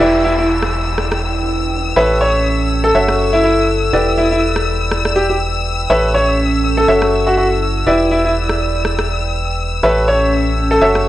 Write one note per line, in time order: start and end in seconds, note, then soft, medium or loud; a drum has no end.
0.00 1.94 E1 medium
0.00 0.22 E4 medium
0.00 1.94 E4 medium
0.00 2.37 E4 medium
0.00 1.94 G4 medium
0.00 0.79 A4 medium
0.00 1.94 B4 medium
0.00 1.94 D5 medium
0.00 11.09 E6 medium
0.00 downlifter medium
0.24 0.33 E4 medium
0.38 0.45 E4 medium
0.38 2.95 G5 medium
0.49 1.96 D5 medium
0.62 cross-stick medium
0.98 cross-stick medium
1.12 cross-stick medium
1.96 2.93 A1 medium
1.96 3.35 C#4 medium
1.96 2.92 G4 medium
1.96 2.92 A4 medium
1.96 2.18 B4 medium
1.96 2.92 C#5 medium
1.96 2.92 E5 medium
2.21 2.43 C#5 medium
2.41 4.72 A4 medium
2.84 3.00 A4 medium
2.95 3.91 F#1 medium
2.95 6.30 E4 medium
2.95 3.91 F#4 medium
2.95 3.91 A4 medium
2.95 3.91 C#5 medium
2.95 3.91 E5 medium
3.08 cross-stick medium
3.33 3.42 E4 medium
3.44 3.66 E4 medium
3.93 5.88 E1 medium
3.93 5.87 E4 medium
3.93 5.87 G4 medium
3.93 5.87 B4 medium
3.93 5.87 D5 medium
4.18 4.26 E4 medium
4.31 4.38 E4 medium
4.56 5.90 D5 medium
4.56 cross-stick medium
4.73 6.88 G5 medium
4.91 cross-stick medium
5.05 cross-stick medium
5.16 5.25 G4 medium
5.30 5.37 G4 medium
5.90 6.86 A1 medium
5.90 7.29 C#4 medium
5.90 6.86 G4 medium
5.90 6.86 A4 medium
5.90 6.12 B4 medium
5.90 6.86 C#5 medium
5.90 6.86 E5 medium
6.14 6.37 C#5 medium
6.24 8.65 A4 medium
6.77 6.94 A4 medium
6.88 7.84 F#1 medium
6.88 10.24 E4 medium
6.88 7.84 F#4 medium
6.88 7.84 A4 medium
6.88 7.84 C#5 medium
6.88 7.84 E5 medium
7.02 cross-stick medium
7.27 7.34 F#4 medium
7.37 7.46 F#4 medium
7.87 9.81 E1 medium
7.87 9.81 E4 medium
7.87 8.09 E4 medium
7.87 9.81 G4 medium
7.87 9.81 B4 medium
7.87 9.81 D5 medium
8.11 8.20 E4 medium
8.11 9.83 D5 medium
8.25 8.32 E4 medium
8.49 10.81 G5 medium
8.49 cross-stick medium
8.85 cross-stick medium
8.99 cross-stick medium
9.83 10.79 A1 medium
9.83 11.09 C#4 medium
9.83 10.79 G4 medium
9.83 10.79 A4 medium
9.83 10.05 B4 medium
9.83 10.79 C#5 medium
9.83 10.79 E5 medium
10.08 10.30 C#5 medium
10.17 11.09 A4 medium
10.71 10.87 A4 medium
10.82 11.09 F#1 medium
10.82 11.09 E4 medium
10.82 11.09 F#4 medium
10.82 11.09 A4 medium
10.82 11.09 C#5 medium
10.82 11.09 E5 medium
10.95 cross-stick medium